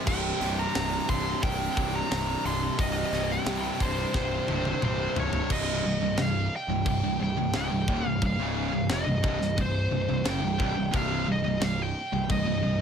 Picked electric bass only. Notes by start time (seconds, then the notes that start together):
0.07 C1
0.41 C1
0.76 C1
1.09 C1
1.43 C1
1.77 C1
2.11 C1
2.45 C1
2.79 C1
3.13 C1
3.46 C2
3.80 C1
4.15 C1
4.48 C1
4.83 C1
5.16 C1
5.50 C1
5.84 C1
6.01 C1
6.17 C1
6.68 C1
6.86 C1
7.03 C1
7.20 C1
7.37 C1
7.54 C#1
7.71 C1
7.88 D#1
8.05 C1
8.22 C1
8.38 C#1
8.73 C1
8.90 F1
9.07 C1
9.24 C1
9.41 C1
9.58 C1
9.92 C1
10.09 C1
10.25 F#1
10.43 C1
10.60 C1
10.78 C1
10.94 C1
11.28 C1
11.45 C1
11.62 C1
12.13 C1
12.30 C1
12.47 C1
12.64 C1